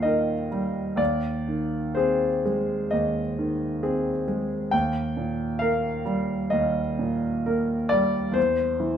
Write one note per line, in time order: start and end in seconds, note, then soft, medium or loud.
0.00 0.95 D#2 soft
0.00 0.33 A#2 soft
0.00 0.52 G3 soft
0.00 0.04 D#4 soft
0.00 0.05 A#4 soft
0.00 0.98 D#5 medium
0.00 1.02 F5 medium
0.00 1.01 G5 medium
0.04 0.47 D#4 soft
0.04 0.48 A#4 soft
0.52 0.99 G3 soft
0.96 2.87 D#2 soft
0.96 1.96 D5 medium
1.48 2.26 D#3 soft
1.95 2.41 C4 soft
1.95 2.41 G#4 soft
1.95 2.91 C5 medium
2.45 3.20 G#3 soft
2.91 4.69 D#2 soft
2.91 3.82 D#5 medium
3.39 4.10 D#3 soft
3.83 4.24 C4 soft
3.83 4.24 G#4 soft
4.28 4.73 G#3 soft
4.71 6.49 D#2 soft
4.71 5.60 G5 medium
5.17 5.88 A#2 soft
5.59 6.03 A#3 soft
5.59 6.03 A#4 soft
5.59 6.52 F5 medium
6.06 6.80 G3 soft
6.50 8.32 D#2 soft
6.50 7.91 D#5 medium
6.99 7.74 A#2 soft
7.46 7.88 A#3 soft
7.46 7.88 A#4 soft
7.89 8.36 G3 soft
7.89 8.35 D5 medium
8.32 8.97 E2 soft
8.32 8.97 C5 medium
8.80 8.97 E3 soft